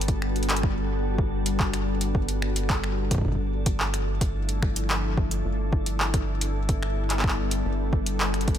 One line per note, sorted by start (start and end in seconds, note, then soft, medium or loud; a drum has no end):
0.00 3.22 G1 medium
0.00 3.21 G3 medium
0.00 3.21 B3 medium
0.00 3.21 D4 medium
0.00 3.21 F#4 medium
0.00 3.21 A4 medium
0.00 closed hi-hat medium
0.08 kick loud
0.08 closed hi-hat medium
0.22 finger snap medium
0.36 closed hi-hat soft
0.43 closed hi-hat soft
0.50 clap loud
0.50 closed hi-hat soft
0.56 closed hi-hat medium
0.63 finger snap medium
0.63 kick loud
1.18 kick loud
1.46 closed hi-hat medium
1.60 kick loud
1.60 clap loud
1.74 finger snap medium
1.74 closed hi-hat medium
2.01 closed hi-hat medium
2.15 kick loud
2.29 closed hi-hat medium
2.42 finger snap medium
2.56 closed hi-hat medium
2.70 kick loud
2.70 clap loud
2.84 finger snap medium
3.11 kick loud
3.11 closed hi-hat medium
3.15 kick medium
3.18 kick medium
3.21 5.42 G1 medium
3.21 kick medium
3.25 5.43 F3 medium
3.25 5.43 A3 medium
3.25 8.58 D4 medium
3.25 5.43 E4 medium
3.25 8.58 A4 medium
3.25 kick soft
3.28 kick soft
3.32 kick soft
3.35 kick soft
3.66 kick loud
3.66 closed hi-hat medium
3.80 clap loud
3.94 finger snap medium
3.94 closed hi-hat medium
4.21 kick loud
4.21 closed hi-hat medium
4.49 closed hi-hat medium
4.62 finger snap medium
4.62 kick loud
4.76 closed hi-hat medium
4.90 clap loud
5.17 kick loud
5.31 closed hi-hat medium
5.45 7.62 G1 medium
5.45 8.58 G3 medium
5.45 8.58 B3 medium
5.45 7.63 E4 medium
5.73 kick loud
5.86 closed hi-hat medium
6.00 clap loud
6.14 finger snap soft
6.14 kick loud
6.14 closed hi-hat medium
6.41 closed hi-hat medium
6.69 kick loud
6.69 closed hi-hat soft
6.83 finger snap medium
7.10 clap medium
7.10 closed hi-hat medium
7.19 clap medium
7.24 finger snap medium
7.24 kick loud
7.28 clap loud
7.51 closed hi-hat medium
7.65 8.58 G1 medium
7.65 8.58 F#4 medium
7.93 kick loud
8.06 closed hi-hat medium
8.20 clap loud
8.34 finger snap medium
8.34 closed hi-hat soft
8.41 closed hi-hat soft
8.48 kick loud
8.48 closed hi-hat soft
8.55 closed hi-hat soft